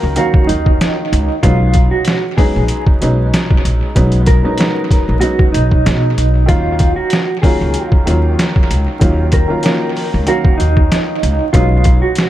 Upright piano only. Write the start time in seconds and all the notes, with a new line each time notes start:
Already playing: D#3 F#3 A#3 C#4 F4
0.16 D#3 F#3 A#3 C#4 F5
1.43 F#3 G#3 B3 C#4 D#4
2.37 F#3 G#3 B3 C#4 D#4
3.01 F#3 G#3 B3 C#4 D#4
3.95 F#3 G#3 B3 C#4 D#4
4.43 F#3 G#3 B3 C#4 D#4
4.58 F#3 G#3 B3 C#4 D#4
5.21 F#3 G#3 B3 C#4 D#4
6.46 D#3 F#3 A#3 C#4 F4
7.43 D#3 F#3 A#3 C#4 F4
8.06 D#3 F#3 A#3 C#4 F4
8.99 D#3 F#3 A#3 C#4 F4
9.48 D#3 F#3 A#3 C#4 F4
9.64 D#3 F#3 A#3 C#4 F4
10.26 D#3 F#3 A#3 C#4 F5
11.53 F#3 G#3 B3 C#4 D#4